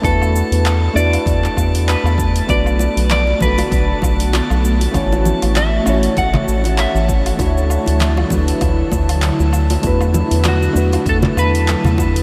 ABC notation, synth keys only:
X:1
M:4/4
L:1/8
Q:"Swing 16ths" 1/4=98
K:Edor
V:1 name="Synth keys"
[A,DEFB]3 [A,DEFB]4- [A,DEFB] | [A,B,DFB]3 [A,B,DFA]4- [A,B,DFA] | [A,CEFc]3 [A,CEFc]4- [A,CEFc] | [A,DEFc]3 [A,DEFB]4- [A,DEFB] |
[A,DEFB]3 [A,DEFB]4- [A,DEFB] |]